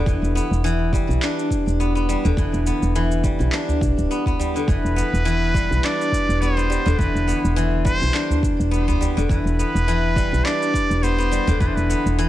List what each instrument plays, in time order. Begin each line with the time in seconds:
Already playing: guzheng D3 B3 D4
0.06 fm bass E1, guzheng E3, kick, cabasa
0.22 fm bass E1, cabasa
0.35 guzheng B3, cabasa
0.51 fm bass E1, cabasa
0.64 guzheng E3, cabasa
0.93 guzheng G3, kick, cabasa
1.09 fm bass B1, cabasa
1.22 guzheng D4, clap, cabasa
1.39 cabasa
1.50 kick, cabasa
1.67 fm bass E1, cabasa
1.80 guzheng B3, cabasa
1.95 guzheng B3, cabasa
2.09 guzheng G3, cabasa
2.24 fm bass E1, guzheng D3, udu, cabasa
2.37 fm bass E1, guzheng E3, kick, cabasa
2.53 fm bass E1, cabasa
2.67 guzheng B3, cabasa
2.82 fm bass E1, cabasa
2.95 guzheng E3, cabasa
3.11 cabasa
3.24 guzheng G3, kick, cabasa
3.40 fm bass B1, cabasa
3.52 guzheng D4, clap, cabasa
3.68 udu, cabasa
3.81 fm bass B1, kick, cabasa
3.98 fm bass D1, cabasa
4.11 guzheng B3, cabasa
4.26 guzheng B3, kick, udu, cabasa
4.39 guzheng G3, udu, cabasa
4.56 guzheng D3, cabasa
4.67 fm bass E1, guzheng E3, muted trumpet B4, kick, cabasa
4.84 fm bass E1, cabasa
4.96 guzheng B3, cabasa
5.13 fm bass E1, cabasa
5.25 guzheng E3, cabasa
5.54 guzheng G3, kick, cabasa
5.71 fm bass B1, cabasa
5.84 guzheng D4, muted trumpet D5, clap, cabasa
6.01 cabasa
6.12 kick, cabasa
6.29 fm bass E1, cabasa
6.41 guzheng B3, muted trumpet C5, cabasa
6.57 guzheng B3, cabasa
6.70 guzheng G3, cabasa
6.86 fm bass E1, guzheng D3, udu, cabasa
6.99 fm bass E1, guzheng E3, muted trumpet B4, kick, cabasa
7.15 fm bass E1, cabasa
7.27 guzheng B3, cabasa
7.44 fm bass E1, cabasa
7.56 guzheng E3, cabasa
7.85 guzheng G3, muted trumpet C5, kick, cabasa
8.02 fm bass B1, cabasa
8.13 guzheng D4, clap, cabasa
8.30 udu, cabasa
8.43 kick, cabasa
8.60 fm bass E1, cabasa
8.71 guzheng B3, cabasa
8.88 guzheng B3, udu, cabasa
9.00 guzheng G3, udu, cabasa
9.17 fm bass E1, guzheng D3, cabasa
9.29 fm bass E1, guzheng E3, muted trumpet B4, kick, cabasa
9.45 fm bass E1, cabasa
9.59 guzheng B3, cabasa
9.75 fm bass E1, cabasa
9.88 guzheng E3, cabasa
10.16 guzheng G3, kick, cabasa
10.33 fm bass B1, cabasa
10.45 guzheng D4, muted trumpet D5, clap, cabasa
10.62 cabasa
10.74 kick, cabasa
10.90 fm bass E1, cabasa
11.03 guzheng B3, muted trumpet C5, cabasa
11.18 guzheng B3, cabasa
11.31 guzheng G3, cabasa
11.47 fm bass E1, guzheng D3, udu, cabasa
11.60 fm bass E1, guzheng E3, muted trumpet B4, kick, cabasa
11.67 muted trumpet C5
11.76 fm bass E1, muted trumpet B4, cabasa
11.90 guzheng B3, cabasa
12.06 fm bass E1, cabasa
12.18 guzheng E3, cabasa